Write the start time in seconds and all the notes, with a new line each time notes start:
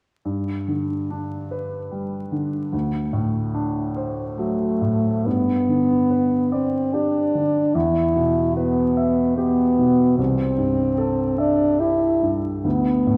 0.25 G2
0.68 D3
1.10 D4
1.51 B4
1.92 G3
2.32 D3
2.73 D2
3.13 A2
3.54 D4
3.96 C5
4.38 F#3 A3
4.81 A2
5.26 G2 B3
5.69 D3
6.11 B4
6.52 C4 D5
6.94 D4 G4
7.35 D3
7.75 E2 E4
8.15 B2
8.56 B3 B4
8.97 E5
9.37 B3 G4
9.78 B2
10.18 C2 C4
10.58 G2
10.98 A4
11.38 D4 E5
11.80 E4 G4
12.22 G2
12.64 D2 B3
13.07 A2